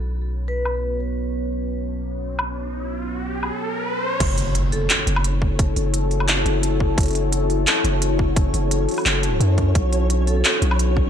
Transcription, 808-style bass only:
X:1
M:4/4
L:1/8
Q:"Swing 16ths" 1/4=173
K:F#m
V:1 name="808-style bass" clef=bass
B,,,8- | B,,,8- | B,,,4 z4 | F,,,4 z F,,,3- |
F,,, F,,,4 F,,,3 | F,,,4 z F,,,3- | F,,, F,,,2 z F,,,2 F,,2 | B,,,4 z B,,,3 |]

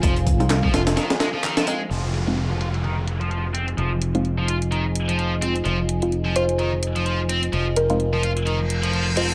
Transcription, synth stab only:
X:1
M:4/4
L:1/16
Q:"Swing 16ths" 1/4=128
K:Fm
V:1 name="Synth stab"
z3 [A,CEF]8- [A,CEF]3 [A,CEF]2 | z3 [A,CEF]12- [A,CEF]- | [A,CEF]3 [A,CEF]8- [A,CEF]3 [A,CEF] z | z3 [A,CEF]12- [A,CEF]- |
[A,CEF]3 [A,CEF]8- [A,CEF]3 [A,CEF] z |]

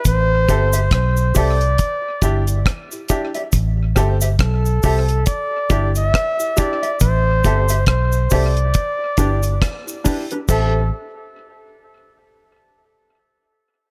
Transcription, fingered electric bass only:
X:1
M:4/4
L:1/8
Q:"Swing 16ths" 1/4=69
K:Am
V:1 name="Fingered electric bass" clef=bass
A,,, G,,, B,,, C,, z G,,, z2 | A,,, G,,, B,,, C,, z G,,, z2 | A,,, G,,, B,,, C,, z G,,, z2 | A,,, z6 z |]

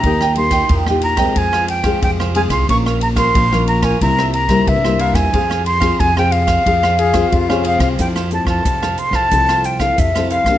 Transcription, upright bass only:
X:1
M:4/4
L:1/16
Q:1/4=90
K:Fm
V:1 name="Upright bass" clef=bass
E,,4 =E,,4 F,,4 F,,3 C,, | B,,,4 B,,,4 C,,4 C,,3 =E,, | F,,4 F,,4 F,,4 F,,3 C,, | [K:F] F,,3 F,, F,,2 z F,, C,,4 F,,3 F,, |]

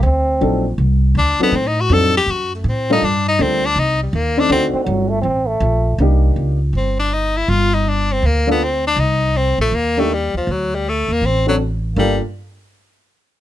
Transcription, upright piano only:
X:1
M:4/4
L:1/8
Q:"Swing" 1/4=161
K:Gm
V:1 name="Upright piano"
z2 [^F,CDEA] z4 [F,CDEA] | z2 [^F,CDEA] z4 [G,B,D=FA] | z2 [G,B,DFA] z4 [A,CDEA] | [A,CDE^F]3 z4 z |
[B,DEG]3 z4 z | z4 z [B,DFA] z2 | z4 z [B,DEG] z2 | z4 z [CD^FA] z2 |
[B,DFA] z6 z |]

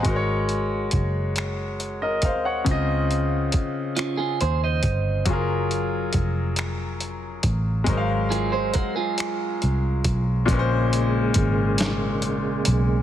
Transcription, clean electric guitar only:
X:1
M:6/8
L:1/16
Q:3/8=46
K:Abmix
V:1 name="Clean electric guitar"
z12 | z6 [DF] [FA] [Ac] [ce]3 | z12 | z2 [FA] [Ac] [GB] [FA]6 z |
[K:Bbm] z12 |]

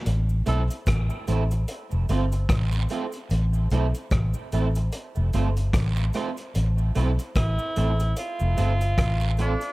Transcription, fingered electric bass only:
X:1
M:4/4
L:1/16
Q:"Swing 16ths" 1/4=74
K:Am
V:1 name="Fingered electric bass" clef=bass
A,,,2 B,,, z A,,, z A,,,2 z F,,, G,,,2 A,,,2 z2 | A,,,2 B,,, z A,,, z A,,,2 z F,,, G,,,2 A,,,2 z2 | A,,,2 B,,, z A,,, z A,,,2 z F,,, G,,,2 A,,,3 z |]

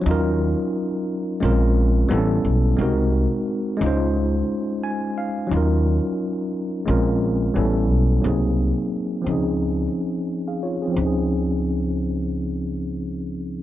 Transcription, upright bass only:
X:1
M:4/4
L:1/16
Q:"Swing 16ths" 1/4=88
K:Db
V:1 name="Upright bass" clef=bass
E,,3 z4 z B,,,4 =A,,,2 =B,,,2 | C,,3 z3 D,,4 z6 | E,,3 z4 z B,,,4 =A,,,2 =B,,,2 | C,,3 z3 D,,4 z6 |
D,,16 |]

